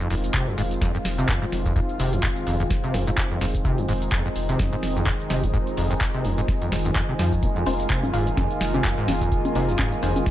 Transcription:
Already playing: D#3 G#3 C4 F4
0.00 F2, closed hi-hat, shaker
0.10 F1 F2, open hi-hat
0.15 D#5
0.24 closed hi-hat, shaker
0.34 C3, kick, clap, closed hi-hat, shaker
0.47 F2, shaker
0.58 F1 G#2, open hi-hat
0.71 closed hi-hat, shaker
0.81 F2, kick, snare, closed hi-hat, shaker
0.95 F2, closed hi-hat, shaker
1.05 F1, snare, open hi-hat
1.18 C3, closed hi-hat, shaker
1.29 F2, kick, clap, closed hi-hat, shaker
1.42 G#2 G#5, shaker
1.52 F1, snare, open hi-hat
1.66 F2, kick, closed hi-hat, shaker
1.76 F2, kick, closed hi-hat, shaker
1.89 closed hi-hat, shaker
1.99 F1 C3, open hi-hat
2.13 F2, closed hi-hat, shaker
2.23 G#2, kick, clap, closed hi-hat, shaker
2.37 closed hi-hat, shaker
2.47 F1 F2, open hi-hat
2.60 F2, closed hi-hat, shaker
2.70 kick, snare, closed hi-hat, shaker
2.84 C3, closed hi-hat, shaker
2.94 F1 F2, snare, open hi-hat
3.07 G#2, closed hi-hat, shaker
3.18 kick, clap, closed hi-hat, shaker
3.31 F2, shaker
3.41 F1 F2, snare, open hi-hat
3.55 kick, closed hi-hat, shaker
3.65 C3 D#4, kick, closed hi-hat, shaker
3.78 F2, closed hi-hat, shaker
3.88 F1 G#2, open hi-hat
4.02 closed hi-hat, shaker
4.12 F2, kick, clap, closed hi-hat, shaker
4.26 F2, shaker
4.36 F1, open hi-hat
4.49 C3, closed hi-hat, shaker
4.59 F2, kick, snare, closed hi-hat, shaker
4.73 G#2, closed hi-hat, shaker
4.83 F1, snare, open hi-hat
4.96 F2, closed hi-hat, shaker
5.07 F2, kick, clap, closed hi-hat, shaker
5.20 shaker
5.30 F1 C3, snare, open hi-hat
5.43 F2, kick, closed hi-hat, shaker
5.54 G#2, kick, closed hi-hat, shaker
5.67 closed hi-hat, shaker
5.77 F1 F2, open hi-hat
5.91 F2, closed hi-hat, shaker
6.01 kick, clap, closed hi-hat, shaker
6.14 C3, closed hi-hat, shaker
6.24 F1 F2, open hi-hat
6.38 G#2, closed hi-hat, shaker
6.48 kick, snare, closed hi-hat, shaker
6.61 F2, closed hi-hat, shaker
6.72 F1, snare, open hi-hat
6.85 F2, closed hi-hat, shaker
6.95 F2, kick, clap, closed hi-hat, shaker
7.09 C3, shaker
7.19 F2 F3, snare, open hi-hat
7.33 kick, closed hi-hat, shaker
7.43 F2 A#3 F4, kick, closed hi-hat, shaker
7.56 F2, closed hi-hat, shaker
7.66 F1 G#3 D#4 F4 C5, open hi-hat, high conga
7.80 closed hi-hat, shaker
7.90 C3, kick, clap, closed hi-hat, shaker
8.03 F2, high conga, shaker
8.13 F1 G#2 G#3 D#4 F4 F5, open hi-hat
8.27 F2, closed hi-hat, shaker
8.37 F2, kick, snare, closed hi-hat, high conga, shaker
8.51 closed hi-hat, shaker
8.61 F1, snare, open hi-hat
8.74 C3, closed hi-hat, high conga, shaker
8.84 F2, kick, clap, closed hi-hat, shaker
8.98 G#2, shaker
9.08 F1 F2, snare, open hi-hat, high conga
9.21 F2, kick, closed hi-hat, shaker
9.32 kick, closed hi-hat, shaker
9.45 closed hi-hat, high conga, shaker
9.55 F1 C3 G#3 D#4 F4 D#5, open hi-hat
9.69 F2, closed hi-hat, shaker
9.79 G#2, kick, clap, closed hi-hat, high conga, shaker
9.92 F2, closed hi-hat, shaker
10.03 F1 F2 G#3 D#4 F4 C5, open hi-hat
10.16 closed hi-hat, high conga, shaker
10.26 kick, snare, closed hi-hat, shaker

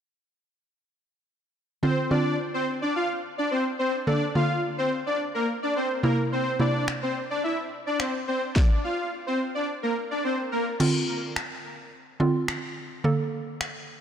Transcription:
1.83 D3 C4 F4 C5
2.11 D3 C4 D4 F4 D5
2.54 C4 C5
2.82 D4 D5
2.95 F4 F5
3.38 D4 D5
3.51 C4 C5
3.79 C4 C5
4.07 D3 A#3 D4 A4 D5
4.35 D3 A#3 F4 F5
4.78 C4 C5
5.06 D4 D5
5.34 A#3 A#4
5.63 D4 D5
5.76 C4 C5
6.03 C3 A#3 E4 A#4
6.32 C4 C5
6.59 C3 A#3 D4 E4 D5
6.88 finger snap
7.02 C4 C5
7.30 D4 D5
7.44 E4 E5
7.87 D4 D5
8.00 C4 C5, finger snap
8.28 C4 C5
8.56 D4 D5, kick, snare
8.84 F4 F5
9.27 C4 C5
9.55 D4 D5
9.83 A#3 A#4
10.11 D4 D5
10.24 C4 C5
10.52 A#3 A#4
10.80 D3 C4 F4, crash
11.36 finger snap
12.20 D3 C4 F4
12.48 finger snap
13.04 D3 A#3 A4
13.61 finger snap

